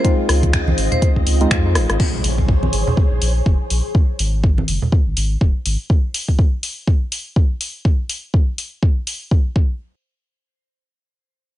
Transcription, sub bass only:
0.29 0.74 C#2 loud
0.78 0.89 G#1 loud
1.16 1.24 C#2 medium
1.26 1.46 C#2 loud
1.51 1.77 F2 loud
1.75 1.86 G#1 medium
1.90 1.97 G#1 loud
2.24 2.69 A#1 medium
2.73 2.84 G#1 loud
3.11 3.19 A#1 medium
3.22 3.41 A#1 loud
3.46 3.57 F1 medium
3.70 3.81 A#1 medium
4.19 4.64 G#1 medium
4.68 4.79 F#1 loud
5.07 5.14 G#1 medium
5.17 5.36 G#1 medium
5.41 5.52 D#1 medium
5.66 5.76 G#1 loud

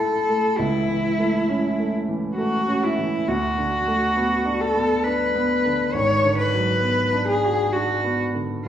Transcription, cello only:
0.00 0.59 A4 medium
0.57 1.93 E4 medium
2.36 2.85 F#4 medium
2.83 3.29 E4 medium
3.28 4.62 F#4 medium
4.61 5.06 A4 medium
5.04 5.95 B4 medium
5.93 6.38 C#5 medium
6.38 7.27 B4 medium
7.28 7.74 G#4 medium
7.73 8.19 F#4 medium

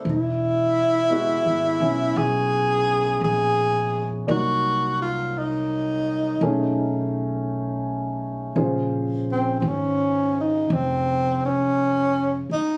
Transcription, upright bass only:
0.05 1.41 E1 medium
1.46 1.78 G#1 medium
1.80 2.13 B1 medium
2.16 3.18 B1 medium
3.21 4.24 A#1 medium
4.28 6.37 C2 medium
6.41 8.51 B1 medium
8.56 9.59 A#1 medium
9.62 10.66 G#1 medium
10.70 12.45 F1 medium
12.50 muted upright bass stroke soft

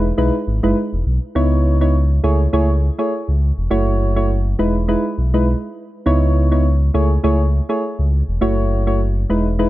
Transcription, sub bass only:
0.00 0.12 E1 loud
0.18 0.31 B1 loud
0.47 0.60 G#1 medium
0.63 0.74 F#1 medium
0.93 1.04 E1 medium
1.06 1.19 B1 medium
1.35 2.20 C#2 loud
2.24 2.48 C#2 loud
2.53 2.90 C#2 medium
3.28 3.52 C#2 medium
3.58 3.68 E1 medium
3.71 4.55 F#1 loud
4.59 4.96 E1 medium
5.18 5.55 B1 medium
6.06 6.90 C#2 loud
6.94 7.18 C#2 loud
7.24 7.61 C#2 loud
7.99 8.23 C#2 medium
8.28 8.39 E1 medium
8.41 9.26 F#1 loud
9.30 9.67 E1 medium

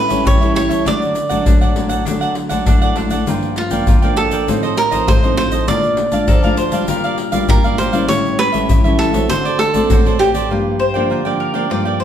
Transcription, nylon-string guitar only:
0.00 0.23 A2 medium
0.10 0.36 G3 medium
0.10 0.36 C#4 medium
0.10 0.36 E4 medium
0.27 0.84 E3 medium
0.43 0.82 G3 medium
0.43 0.83 C#4 medium
0.43 0.83 E4 medium
0.87 1.44 D3 medium
0.87 1.15 F#3 medium
0.87 1.15 A3 medium
0.87 1.15 D4 medium
1.31 1.72 F#3 medium
1.31 1.72 A3 medium
1.31 1.72 D4 medium
1.47 2.04 A2 medium
1.76 2.02 F#3 medium
1.76 2.02 A3 medium
1.76 2.02 D4 medium
2.07 2.64 D3 medium
2.07 2.47 F#3 medium
2.07 2.48 A3 medium
2.07 2.48 D4 medium
2.52 2.92 F#3 medium
2.52 2.92 A3 medium
2.52 2.93 D4 medium
2.68 3.25 A2 medium
2.97 3.15 F#3 medium
2.97 3.15 A3 medium
2.97 3.15 D4 medium
3.28 3.85 G2 medium
3.28 3.68 F3 medium
3.28 3.68 A#3 medium
3.28 3.68 D4 medium
3.72 3.97 F3 medium
3.72 3.98 A#3 medium
3.72 3.98 D4 medium
3.88 4.45 D3 medium
4.04 4.44 F3 medium
4.04 4.44 A#3 medium
4.04 4.44 D4 medium
4.48 5.05 A2 medium
4.48 4.76 F3 medium
4.48 4.76 C4 medium
4.48 4.77 D#4 medium
4.92 5.18 F3 medium
4.92 5.18 C4 medium
4.92 5.18 D#4 medium
5.08 5.65 A2 medium
5.24 5.64 F3 medium
5.24 5.64 C4 medium
5.24 5.64 D#4 medium
5.69 6.26 A#2 medium
5.69 5.97 A3 medium
5.69 5.97 D4 soft
5.69 5.97 F4 medium
6.12 6.38 A3 medium
6.12 6.39 D4 medium
6.12 6.39 F4 medium
6.29 6.86 F3 medium
6.44 6.69 A3 medium
6.44 6.70 D4 medium
6.44 6.70 F4 medium
6.73 7.29 G3 medium
6.73 7.29 D4 medium
6.73 7.29 F4 medium
6.89 7.46 A#2 medium
7.33 7.59 G3 medium
7.33 7.59 D4 medium
7.33 7.59 F4 medium
7.49 8.06 A#2 medium
7.65 7.90 G3 medium
7.65 7.90 D4 medium
7.65 7.90 F4 medium
7.93 8.49 G3 medium
7.93 8.49 C#4 medium
7.93 8.49 E4 medium
8.09 8.67 A2 medium
8.54 8.80 G3 medium
8.54 8.80 C#4 medium
8.54 8.80 E4 medium
8.70 9.27 E3 medium
8.85 9.10 G3 medium
8.85 9.10 C#4 medium
8.85 9.11 E4 medium
9.14 9.70 A3 medium
9.14 9.70 C4 medium
9.14 9.70 F#4 medium
9.30 9.88 D3 medium
9.75 10.00 A3 medium
9.75 10.00 C4 medium
9.75 10.01 F#4 medium
9.90 10.48 A2 medium
10.05 10.46 A3 medium
10.05 10.46 C4 medium
10.05 10.46 F#4 medium
10.50 11.08 G2 medium
10.50 10.79 F3 soft
10.50 10.79 A#3 medium
10.50 10.79 D4 medium
10.95 11.21 F3 medium
10.95 11.21 A#3 medium
10.95 11.21 D4 medium
11.11 11.68 D3 medium
11.26 11.51 F3 medium
11.26 11.51 A#3 medium
11.26 11.52 D4 medium
11.54 11.66 F3 medium
11.54 11.66 A#3 medium
11.54 11.66 D4 medium
11.71 12.04 G2 medium
11.71 12.04 F3 medium
11.71 12.04 A#3 medium
11.71 12.04 D4 medium

